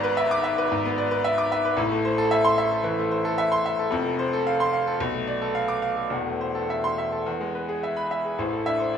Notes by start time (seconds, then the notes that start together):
Already playing: G#1 G#2 B3 D5
0.04 B4
0.17 E5
0.31 D6
0.44 E5
0.58 B4
0.72 G#2
0.85 B3
0.98 D5
1.11 B4
1.24 E5
1.38 D6
1.52 E5
1.65 B4
1.77 A1 A2
1.92 A3
2.05 C5
2.18 A4
2.31 E5
2.45 C6
2.58 E5
2.71 A4
2.84 E3
2.99 A3
3.11 C5
3.25 A4
3.38 E5
3.52 C6
3.66 E5
3.79 A4
3.91 F1 F2
4.05 A3
4.19 C5
4.33 A4
4.47 F5
4.60 C6
4.73 F5
4.87 A4
5.00 B1
5.14 A3
5.27 D5
5.42 A4
5.55 F5
5.68 D6
5.82 F5
5.96 A4
6.10 E1 E2
6.26 A3
6.41 C5
6.55 A4
6.70 E5
6.84 C6
6.98 E5
7.12 A4
7.26 E2
7.41 G#3
7.55 B4
7.69 G#4
7.83 E5
7.97 B5
8.11 E5
8.25 G#4
8.38 A1 A2 C5
8.53 A4
8.66 D4 E5
8.80 C5
8.93 D5